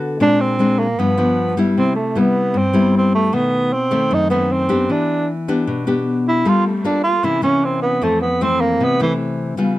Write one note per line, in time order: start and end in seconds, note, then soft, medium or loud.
0.00 0.19 D3 medium
0.00 0.18 B3 medium
0.00 0.18 F#4 medium
0.00 0.18 A4 medium
0.20 0.97 A#2 medium
0.20 0.56 G#3 soft
0.20 0.57 C4 soft
0.20 0.57 D4 medium
0.20 0.42 D4 medium
0.40 0.80 C4 medium
0.59 0.86 G#3 soft
0.59 0.86 C4 soft
0.59 0.86 D4 medium
0.79 1.01 A#3 medium
0.99 1.75 G2 medium
0.99 1.15 F3 soft
0.99 1.57 B3 medium
0.99 1.15 B3 soft
0.99 1.16 D4 medium
1.17 1.54 F3 medium
1.17 1.54 B3 soft
1.17 1.54 D4 medium
1.57 1.93 G3 medium
1.57 1.93 B3 medium
1.57 1.94 E4 medium
1.77 2.53 C3 medium
1.77 1.94 C4 medium
1.95 2.20 A3 medium
2.15 2.54 G3 soft
2.15 2.55 B3 medium
2.15 2.59 B3 medium
2.15 2.55 E4 medium
2.54 3.31 G2 medium
2.54 2.95 C4 medium
2.73 3.29 G3 medium
2.73 3.30 B3 medium
2.73 3.30 E4 medium
2.97 3.14 C4 medium
3.15 3.36 A3 medium
3.32 4.09 B2 medium
3.32 3.71 D#3 medium
3.32 3.72 A3 soft
3.32 3.74 B3 medium
3.73 4.15 C4 medium
3.91 4.27 D#3 medium
3.91 4.27 A3 medium
3.91 4.27 C4 medium
4.11 4.87 F#2 medium
4.11 4.29 D#4 loud
4.30 4.66 D#3 soft
4.30 4.67 A3 medium
4.30 4.54 B3 medium
4.30 4.67 C4 medium
4.52 4.92 C4 medium
4.69 5.25 B3 medium
4.69 5.25 D4 medium
4.69 5.25 G4 medium
4.90 5.65 E3 medium
4.90 5.29 D4 medium
5.48 5.84 B3 medium
5.48 5.84 D4 medium
5.48 5.84 G4 medium
5.67 6.44 B2 medium
5.87 6.42 B3 medium
5.87 6.42 D4 medium
5.87 6.43 G4 medium
6.28 6.50 E4 medium
6.45 7.22 G3 medium
6.45 6.70 A#3 soft
6.45 6.71 F4 soft
6.45 6.66 F4 medium
6.45 6.71 A4 soft
6.66 6.82 A3 soft
6.84 7.11 A#3 medium
6.84 7.03 D4 medium
6.84 7.11 F4 soft
6.84 7.11 A4 medium
7.03 7.25 F4 medium
7.23 8.00 C3 medium
7.23 7.40 E3 soft
7.23 7.40 A#3 soft
7.23 7.40 C#4 medium
7.23 7.42 E4 medium
7.42 7.98 E3 soft
7.42 7.98 A#3 soft
7.42 7.66 C#4 medium
7.42 7.98 C#4 medium
7.64 7.81 C4 medium
7.82 8.05 B3 medium
8.01 8.78 F2 medium
8.01 8.27 E3 soft
8.01 8.27 A3 soft
8.01 8.20 A3 medium
8.01 8.27 C4 medium
8.21 8.44 B3 medium
8.41 8.96 E3 soft
8.41 8.96 A3 medium
8.41 8.97 C4 medium
8.41 8.62 C4 medium
8.61 8.85 A#3 medium
8.80 9.56 C3 medium
8.80 9.01 B3 medium
9.00 9.55 E3 medium
9.00 9.13 E3 medium
9.00 9.55 A3 medium
9.00 9.55 C4 medium
9.57 9.79 C#3 medium
9.57 9.79 G3 soft
9.57 9.79 B3 soft
9.57 9.79 F4 medium